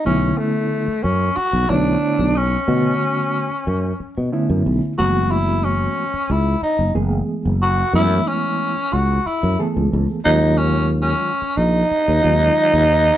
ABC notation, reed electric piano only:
X:1
M:4/4
L:1/8
Q:1/4=91
K:Gblyd
V:1 name="Reed electric piano"
[=D,=A,=B,^C=E]2 z3 [D,A,B,E^c]2 z | [=D,=A,=B,^C^F]2 z3 [D,A,B,C=E]2 [_F,_A,=A,_CG]- | [_F,A,=A,_CG]2 z3 [F,_A,=A,C_A]2 z | [_F,A,=A,_C_F]2 z3 [F,A,C_A=A]2 [E,G,_A,D=F]- |
[E,G,A,DF]2 z3 [E,G,A,DF]2 z |]